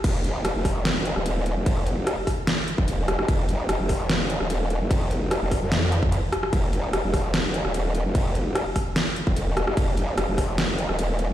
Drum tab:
CC |x---x---x---x---|x---x---x---x---|x---x---x---x---|x---x---x---x---|
HH |x-x-x-o-x-x-x-x-|x-x-x-o-x-x-x-x-|x-x-x-o-x-x-x-x-|x-x-x-o-x-x-x-x-|
SD |----r-r-o--r----|----r-r-o-----rr|----r-r-o--r----|----r-r-o-----rr|
BD |o-----o---------|o-----o----o----|o-----o---------|o-----o----o----|

CC |x---x---x---x---|x---x---x---x---|x---x---x---x---|
HH |x-x-x-o-x-x-x-x-|x-x-x-o-x-x-x-x-|x-x-x-o-x-x-x-x-|
SD |----r-r-o--r----|----r-r-o-----rr|----r-r-o--r----|
BD |o-----o---------|o-----o----o----|o-----o---------|